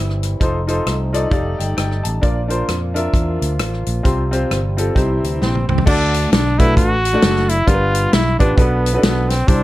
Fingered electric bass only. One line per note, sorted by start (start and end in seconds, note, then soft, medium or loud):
0.00 0.34 G1 medium
0.41 0.80 F1 medium
0.86 1.25 C2 medium
1.32 1.55 F1 medium
1.60 1.75 G1 medium
1.77 2.01 G1 medium
2.05 2.20 A1 medium
2.23 2.62 A#1 medium
2.69 3.07 F2 medium
3.14 3.37 E2 medium
3.42 3.60 D2 medium
3.60 3.83 A1 medium
3.87 4.02 A#1 medium
4.05 4.44 C2 medium
4.51 4.89 G1 medium
4.96 5.19 C2 medium
5.24 5.39 D2 medium
5.42 5.65 A#1 medium
5.69 5.84 C2 medium
5.87 6.25 D2 medium
6.32 6.77 B1 medium
6.77 7.16 A1 medium
7.23 7.61 F#1 loud
7.68 8.06 G1 medium
8.13 8.36 B1 medium
8.40 8.55 A1 medium
8.58 8.96 B1 medium
9.03 9.41 B1 loud
9.49 9.63 C2 loud